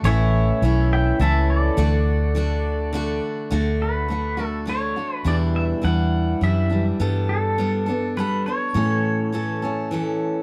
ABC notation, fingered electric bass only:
X:1
M:3/4
L:1/8
Q:1/4=103
K:D
V:1 name="Fingered electric bass" clef=bass
A,,,2 B,,,2 C,,2 | D,,6 | D,,6 | E,,2 E,,2 F,,2 |
G,,6 | A,,6 |]